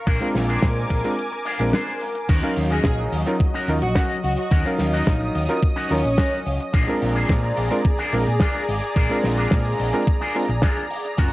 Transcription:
Already playing: A#4
0.06 A#1 D4 G#4 A#4 G#5 D6, kick, closed hi-hat, tambourine
0.20 G#3 C4 D4 F4 A#4, closed hi-hat
0.35 A#1, snare, open hi-hat, tambourine
0.48 D4 G#4 A#4, closed hi-hat, tambourine
0.62 A#2, kick, snare, closed hi-hat, tambourine
0.76 muted clean electric guitar stroke, closed hi-hat
0.90 A#1, kick, open hi-hat, tambourine
1.04 G#3 C4 D4 F4 A#4, muted clean electric guitar stroke, closed hi-hat, tambourine
1.17 closed hi-hat, tambourine
1.31 muted clean electric guitar stroke, closed hi-hat
1.45 D4 G#4 A#4, open hi-hat, tambourine
1.59 A#1 G#3 C4 D4 F4 A#4, closed hi-hat, tambourine
1.73 D4 G#4 C5, snare, closed hi-hat, tambourine
1.88 closed hi-hat
2.01 open hi-hat, tambourine
2.15 closed hi-hat, tambourine
2.29 D#2 F#3 C#4 D#4 F#4 A#4 D#5, kick, closed hi-hat, tambourine, crash
2.42 F#3 C#4 D#4 A#4 F5, closed hi-hat
2.56 D#2, open hi-hat, tambourine
2.70 C#4 D#4 F#4 G#4 A#4, closed hi-hat, tambourine
2.84 A#1 G#4, kick, snare, closed hi-hat, tambourine
2.99 muted clean electric guitar stroke, closed hi-hat
3.12 D#2, open hi-hat, tambourine
3.26 F#3 C#4 D#4 F4 A#4, muted clean electric guitar stroke, closed hi-hat, tambourine
3.40 muted clean electric guitar stroke, kick, closed hi-hat, tambourine
3.54 C#4 D#4 F#4 A#4, closed hi-hat
3.67 D#2 F#3 C#4 D#4 F4 A#4, open hi-hat, tambourine
3.82 A#1 F#4, muted clean electric guitar stroke, closed hi-hat, tambourine
3.95 C#4 D#4 F#4 A#4, kick, snare, closed hi-hat, tambourine
4.10 closed hi-hat
4.24 C#2 F#4, open hi-hat, tambourine
4.37 F#4, muted clean electric guitar stroke, closed hi-hat, tambourine
4.51 D#2 C#4 D#4 F#4 A#4 D#6, kick, closed hi-hat, tambourine
4.65 F#3 C#4 D#4 A#4 F5, closed hi-hat
4.79 D#2, snare, open hi-hat, tambourine
4.93 C#4 D#4 F#4 A#4, closed hi-hat, tambourine
5.06 A#1, kick, snare, closed hi-hat, tambourine
5.20 muted clean electric guitar stroke, closed hi-hat
5.35 D#2, open hi-hat, tambourine
5.48 F#3 C#4 D#4 F4 A#4, muted clean electric guitar stroke, closed hi-hat, tambourine
5.62 muted clean electric guitar stroke, kick, closed hi-hat, tambourine
5.76 C#4 D#4 F#4 A#4, closed hi-hat
5.90 D#2 F#3 C#4 D#4 F4 A#4, open hi-hat, tambourine
6.04 A#1, muted clean electric guitar stroke, closed hi-hat, tambourine
6.17 C#4 D#4 F#4 A#4, kick, snare, closed hi-hat, tambourine
6.33 closed hi-hat
6.46 C#2, open hi-hat, tambourine
6.60 muted clean electric guitar stroke, closed hi-hat, tambourine
6.73 A#1 D4 F4 G#4 A#4 D5 A#5, kick, closed hi-hat, tambourine
6.87 G#3 C4 D4 F4 A#4, closed hi-hat
7.02 A#1, open hi-hat, tambourine
7.15 D4 F4 G#4 C5, closed hi-hat, tambourine
7.29 A#2, kick, snare, closed hi-hat, tambourine
7.43 muted clean electric guitar stroke, closed hi-hat
7.56 A#1, open hi-hat, tambourine
7.71 G#3 C4 D4 F4 A#4, muted clean electric guitar stroke, closed hi-hat, tambourine
7.85 muted clean electric guitar stroke, kick, closed hi-hat, tambourine
7.98 D4 F4 G#4 A#4, closed hi-hat
8.13 A#1 G#3 C4 D4 F4 A#4, open hi-hat, tambourine
8.27 A#2, muted clean electric guitar stroke, closed hi-hat, tambourine
8.40 D4 F4 G#4 A#4, kick, snare, closed hi-hat, tambourine
8.54 closed hi-hat
8.68 G#1, open hi-hat, tambourine
8.82 muted clean electric guitar stroke, closed hi-hat, tambourine
8.96 A#1 D4 F4 G#4 A#4, kick, closed hi-hat, tambourine
9.09 G#3 C4 D4 F4 A#4, closed hi-hat
9.24 A#1, snare, open hi-hat, tambourine
9.38 D4 F4 G#4 A#4, closed hi-hat, tambourine
9.51 A#2, kick, snare, closed hi-hat, tambourine
9.66 muted clean electric guitar stroke, open hi-hat
9.80 A#1, open hi-hat, tambourine
9.93 G#3 C4 D4 F4 A#4, muted clean electric guitar stroke, closed hi-hat, tambourine
10.07 muted clean electric guitar stroke, kick, closed hi-hat, tambourine
10.21 D4 F4 G#4 A#4, closed hi-hat
10.35 G#3 C4 D4 F4 A#4, open hi-hat, tambourine
10.49 A#1, muted clean electric guitar stroke, closed hi-hat, tambourine
10.62 D4 F4 G#4 A#4, kick, snare, closed hi-hat, tambourine
10.77 closed hi-hat
10.90 open hi-hat, tambourine
11.04 muted clean electric guitar stroke, closed hi-hat, tambourine
11.18 F#1 F#3 C#4 F4 F#4 A#4 F5, kick, closed hi-hat, tambourine

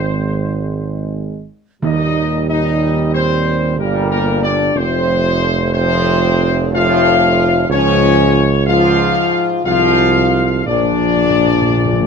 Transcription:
Already playing: G#1 G#2 G#3 C4 C5
1.82 D#2 A#2 D#3 G3 D#4 D#5
2.49 D#4 D#5
3.14 C4 C5
3.76 G1 A#2 G3 A#3 A#4
4.10 A#3 A#4
4.44 D4 D5
4.75 F1 A2 F3 C4 C5
5.73 A2 F3 C4 C5
6.71 A2 F3 F4 F5
7.69 C#2 G#2 F3 C#4 C#5
8.66 G#2 F3 F4 F5
9.65 C2 G#2 F3 F4 F5
10.66 A#1 A#2 F3 D4 D5
10.76 A#2
10.83 A#2
10.91 A#2
11.00 A#2
11.07 A#2
11.15 A#2
11.23 A#2
11.30 A#2
11.38 A#2
11.46 A#2
11.54 A#2
11.62 A#2
11.70 A#2
11.77 A#2
11.85 A#2
11.93 A#2
12.01 A#2

